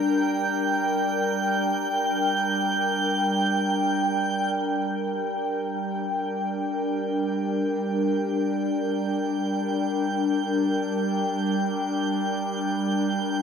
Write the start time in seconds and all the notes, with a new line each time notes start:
Already playing: G3 D4 A#4 G5 G6
4.55 G3 G6
5.37 D4